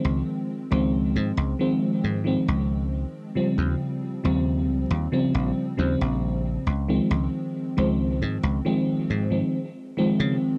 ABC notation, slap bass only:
X:1
M:4/4
L:1/16
Q:1/4=68
K:Dblyd
V:1 name="Slap bass" clef=bass
D,, z2 D,,2 A,, D,, z2 A,, z D,,3 z2 | E,, z2 E,,2 D,, E,, z B,,, z E,, B,,,3 D,, z | D,, z2 D,,2 A,, D,, z2 A,, z4 D, z |]